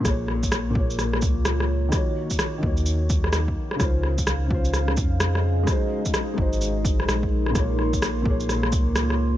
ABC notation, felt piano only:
X:1
M:4/4
L:1/8
Q:"Swing 16ths" 1/4=128
K:Bbm
V:1 name="Felt piano"
[B,,B,Ad]3 [B,,B,Ad]4- [B,,B,Ad] | [E,B,Gd]3 [E,B,Gd]4- [E,B,Gd] | [D,DFc]3 [D,DFc]4- [D,DFc] | [A,EGc]3 [A,EGc]4- [A,EGc] |
[B,,B,Ad]3 [B,,B,Ad]4- [B,,B,Ad] |]